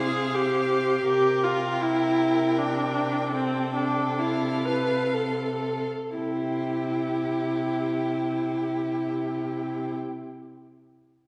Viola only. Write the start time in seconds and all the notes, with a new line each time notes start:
0.00 G#4
0.35 G4
1.06 G4
1.43 F4
1.81 E4
2.58 D4
3.35 C4
3.75 D4
4.18 E4
4.65 B4
5.13 A4
6.18 E4